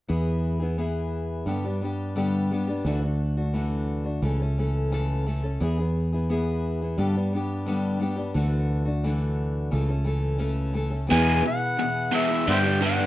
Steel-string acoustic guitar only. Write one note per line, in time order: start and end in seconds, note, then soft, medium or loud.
0.08 0.61 E3 medium
0.08 0.61 B3 medium
0.08 0.61 E4 medium
0.08 0.58 G#4 medium
0.60 0.77 B3 soft
0.60 0.77 E4 soft
0.60 0.78 G#4 medium
0.78 1.47 E3 medium
0.78 1.46 B3 medium
0.78 1.47 E4 medium
0.78 1.47 G#4 medium
1.46 1.64 G2 medium
1.46 1.64 D3 medium
1.46 1.64 G3 medium
1.46 1.65 B3 medium
1.46 1.64 D4 medium
1.46 1.63 G4 medium
1.65 1.80 G3 soft
1.65 1.81 B3 soft
1.65 1.82 D4 medium
1.65 1.82 G4 medium
1.81 2.16 G3 medium
1.81 2.15 B3 medium
1.81 2.16 D4 medium
1.81 2.17 G4 medium
2.16 2.50 G2 medium
2.16 2.51 D3 medium
2.16 2.50 G3 medium
2.16 2.51 B3 medium
2.16 2.51 D4 medium
2.16 2.52 G4 medium
2.51 2.68 G3 medium
2.51 2.68 B3 medium
2.51 2.68 D4 medium
2.51 2.66 G4 medium
2.67 2.86 G3 soft
2.67 2.86 B3 soft
2.67 2.85 D4 medium
2.67 2.85 G4 medium
2.85 3.02 D3 medium
2.85 3.03 E3 medium
2.85 3.03 A3 medium
2.85 3.03 D4 medium
2.85 3.01 F#4 medium
3.02 3.38 A3 soft
3.02 3.37 D4 soft
3.02 3.36 F#4 soft
3.37 3.53 A3 soft
3.37 3.53 D4 soft
3.37 3.54 F#4 medium
3.53 4.05 D3 medium
3.53 4.05 E3 medium
3.53 4.05 A3 medium
3.53 4.04 D4 medium
3.53 4.03 F#4 medium
4.04 4.21 A3 soft
4.04 4.23 D4 soft
4.04 4.22 F#4 soft
4.22 4.39 C#3 medium
4.22 4.39 E3 medium
4.22 4.40 A3 medium
4.22 4.40 C#4 medium
4.22 4.39 A4 medium
4.40 4.58 A3 soft
4.40 4.58 C#4 soft
4.40 4.57 A4 medium
4.58 4.91 E3 medium
4.58 4.92 A3 medium
4.58 4.92 C#4 medium
4.58 4.92 A4 medium
4.92 5.26 C#3 medium
4.92 5.25 E3 medium
4.92 5.26 A3 medium
4.92 5.27 C#4 medium
4.92 5.27 A4 loud
5.26 5.43 E3 medium
5.26 5.43 A3 medium
5.26 5.44 C#4 medium
5.26 5.42 A4 medium
5.44 5.61 A3 soft
5.44 5.61 C#4 soft
5.44 5.60 A4 medium
5.60 5.77 E3 medium
5.60 5.78 B3 medium
5.60 5.78 E4 medium
5.60 5.77 G#4 medium
5.78 6.13 B3 soft
5.78 6.13 E4 soft
5.78 6.11 G#4 soft
6.12 6.29 B3 soft
6.12 6.29 E4 soft
6.12 6.29 G#4 medium
6.29 6.81 E3 medium
6.29 6.81 B3 medium
6.29 6.81 E4 medium
6.29 6.80 G#4 medium
6.81 6.98 B3 soft
6.81 6.98 E4 soft
6.81 6.98 G#4 soft
6.98 7.15 G2 medium
6.98 7.15 D3 medium
6.98 7.15 G3 medium
6.98 7.15 B3 medium
6.98 7.15 D4 medium
6.98 7.14 G4 medium
7.15 7.32 G3 soft
7.15 7.33 B3 soft
7.15 7.33 D4 soft
7.15 7.32 G4 medium
7.33 7.66 G3 medium
7.33 7.67 B3 medium
7.33 7.66 D4 medium
7.33 7.67 G4 medium
7.66 8.00 G2 medium
7.66 8.01 D3 medium
7.66 7.98 G3 medium
7.66 7.99 B3 medium
7.66 8.01 D4 medium
7.66 8.01 G4 medium
7.99 8.17 G3 medium
7.99 8.17 B3 medium
7.99 8.16 D4 medium
7.99 8.15 G4 medium
8.16 8.35 G3 soft
8.16 8.35 B3 soft
8.16 8.34 D4 soft
8.16 8.34 G4 medium
8.34 8.86 D3 medium
8.34 8.87 E3 medium
8.34 8.87 A3 medium
8.34 8.86 D4 medium
8.34 8.84 F#4 medium
8.85 9.04 A3 soft
8.85 9.04 D4 soft
8.85 9.03 F#4 medium
9.04 9.71 D3 medium
9.04 9.71 E3 medium
9.04 9.71 A3 medium
9.04 9.73 D4 medium
9.04 9.73 F#4 medium
9.71 9.89 C#3 medium
9.71 9.89 E3 medium
9.71 9.89 A3 medium
9.71 9.89 C#4 medium
9.71 9.87 A4 medium
9.89 10.04 A3 soft
9.89 10.05 C#4 soft
9.89 10.06 A4 medium
10.04 10.38 E3 medium
10.04 10.38 A3 medium
10.04 10.38 C#4 medium
10.04 10.39 A4 medium
10.38 10.74 C#3 medium
10.38 10.72 E3 medium
10.38 10.73 A3 medium
10.38 10.74 C#4 medium
10.38 10.75 A4 medium
10.73 10.92 E3 medium
10.73 10.92 A3 medium
10.73 10.90 C#4 medium
10.73 10.89 A4 medium
10.90 11.08 A3 soft
10.90 11.08 C#4 medium
10.90 11.09 A4 medium
11.07 11.40 E3 medium
11.07 11.41 B3 medium
11.07 11.43 E4 medium
11.07 11.43 G#4 medium
11.42 11.76 E3 medium
11.42 11.77 B3 medium
11.42 11.78 E4 medium
11.42 11.78 G#4 medium
11.77 12.11 E3 medium
11.77 12.10 B3 medium
11.77 12.13 E4 medium
11.77 12.13 G#4 medium
12.12 12.30 E3 medium
12.12 12.30 B3 medium
12.12 12.29 E4 medium
12.12 12.26 G#4 medium
12.27 12.46 B3 soft
12.27 12.47 E4 soft
12.27 12.46 G#4 medium
12.46 12.64 G2 medium
12.46 12.64 D3 medium
12.46 12.64 G3 medium
12.46 12.63 B3 medium
12.46 12.64 D4 medium
12.46 12.62 G4 medium
12.63 12.78 G3 soft
12.63 12.79 B3 soft
12.63 12.80 D4 soft
12.63 12.81 G4 medium
12.80 12.98 G3 medium
12.80 12.97 B3 medium
12.80 12.96 D4 medium
12.80 12.95 G4 medium
12.97 13.06 G2 medium
12.97 13.06 D3 medium
12.97 13.06 G3 medium
12.97 13.06 B3 medium
12.97 13.06 D4 medium
12.97 13.06 G4 medium